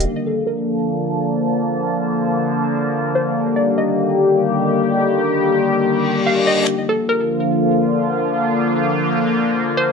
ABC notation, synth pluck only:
X:1
M:4/4
L:1/8
Q:1/4=145
K:Bb
V:1 name="Synth pluck"
z A B6 | z6 z c | z d e6 | z6 f e |
z A B6 | z6 z c |]